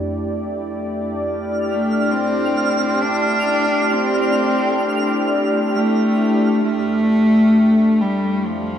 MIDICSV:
0, 0, Header, 1, 4, 480
1, 0, Start_track
1, 0, Tempo, 500000
1, 8435, End_track
2, 0, Start_track
2, 0, Title_t, "Synth texture"
2, 0, Program_c, 0, 99
2, 1142, Note_on_c, 0, 89, 78
2, 6387, Note_off_c, 0, 89, 0
2, 8435, End_track
3, 0, Start_track
3, 0, Title_t, "Analog synth pad"
3, 0, Program_c, 1, 89
3, 0, Note_on_c, 1, 41, 70
3, 0, Note_on_c, 1, 57, 69
3, 0, Note_on_c, 1, 62, 62
3, 0, Note_on_c, 1, 64, 75
3, 0, Note_on_c, 1, 67, 79
3, 0, Note_on_c, 1, 74, 72
3, 1151, Note_off_c, 1, 41, 0
3, 6359, Note_on_c, 1, 41, 73
3, 8435, Note_off_c, 1, 41, 0
3, 8435, Note_off_c, 1, 57, 0
3, 8435, Note_off_c, 1, 62, 0
3, 8435, Note_off_c, 1, 64, 0
3, 8435, Note_off_c, 1, 67, 0
3, 8435, Note_off_c, 1, 74, 0
3, 8435, End_track
4, 0, Start_track
4, 0, Title_t, "Cello"
4, 0, Program_c, 2, 42
4, 1616, Note_on_c, 2, 57, 77
4, 2033, Note_on_c, 2, 60, 85
4, 2048, Note_off_c, 2, 57, 0
4, 2890, Note_on_c, 2, 62, 100
4, 2904, Note_off_c, 2, 60, 0
4, 3765, Note_on_c, 2, 60, 98
4, 3779, Note_off_c, 2, 62, 0
4, 5061, Note_off_c, 2, 60, 0
4, 5495, Note_on_c, 2, 57, 96
4, 6339, Note_off_c, 2, 57, 0
4, 6359, Note_on_c, 2, 57, 104
4, 7686, Note_on_c, 2, 55, 82
4, 7700, Note_off_c, 2, 57, 0
4, 8120, Note_on_c, 2, 53, 83
4, 8135, Note_off_c, 2, 55, 0
4, 8435, Note_off_c, 2, 53, 0
4, 8435, End_track
0, 0, End_of_file